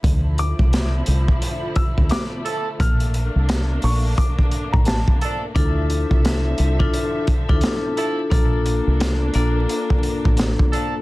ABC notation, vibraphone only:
X:1
M:4/4
L:1/16
Q:"Swing 16ths" 1/4=87
K:Dm
V:1 name="Vibraphone"
z16 | z16 | [DEFA]6 z [DEFA]3 z [DEFA]4- [DEFA] | [B,DFA]6 [B,DFA]8- [B,DFA] z |]